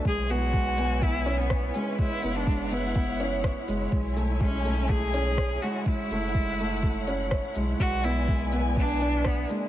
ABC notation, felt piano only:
X:1
M:4/4
L:1/8
Q:1/4=124
K:C#phr
V:1 name="Felt piano"
G, B, G, B, B, C c G, | G, B, G, B, B, C c G, | G, A, G, A, A, C c G, | G, A, G, A, A, C c G, |
G, B, G, B, B, D d G, |]